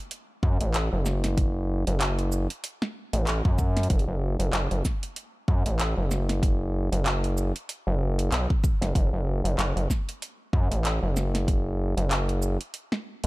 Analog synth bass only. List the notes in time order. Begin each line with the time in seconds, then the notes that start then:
0.43 F#2
0.61 A1
0.93 F#1
1.87 F#1
3.13 A1
3.45 F#2
3.90 F#1
4.08 F#1
4.39 F#1
4.53 F#1
4.71 F#1
5.48 F#2
5.66 A1
5.97 F#1
6.92 F#1
7.87 F#1
8.32 B1
8.81 F#1
8.95 F#1
9.13 F#1
9.44 F#1
9.58 F#1
9.76 F#1
10.53 F#2
10.71 A1
11.03 F#1
11.97 F#1